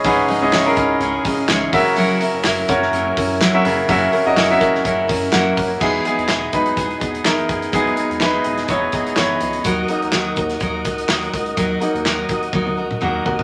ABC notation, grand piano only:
X:1
M:4/4
L:1/16
Q:"Swing 16ths" 1/4=125
K:Elyd
V:1 name="Grand piano"
[CEGB]2 z [CEGd]2 [CEGA]6- [CEGA] z2 [CFAe]2- | [CFAe]4- [CFAe] z [CFAc]6 z [CFAe]2 z | [CFAe]2 z [CFAd]2 [CFAe]6- [CFAe] [A,F]4 | [B,G]2 [B,G]4 [DB]6 [DA]4 |
[B,G]4 [DB]4 [Ec]4 [Ec]3 z | z16 | z12 [A,F]4 |]
V:2 name="Grand piano" clef=bass
G,,6 z8 C,2- | C,4 z8 z2 C,2- | C,4 z12 | [F,G,D]6 [F,G,]2 z8 |
[F,G,D]16 | z2 [F,A,D]6 z8 | z2 [F,A,D]12- [F,A,D]2 |]